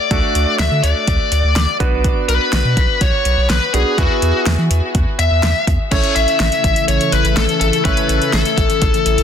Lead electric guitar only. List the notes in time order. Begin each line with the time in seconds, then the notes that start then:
Already playing: D5
0.59 E5
0.83 D5
2.29 B4
3.01 C#5
3.50 B4
3.74 G#4
3.98 F#4
5.19 E5
5.92 C#5
6.16 E5
6.88 C#5
7.12 B4
7.37 A4
7.60 A4
7.85 B4
8.33 A4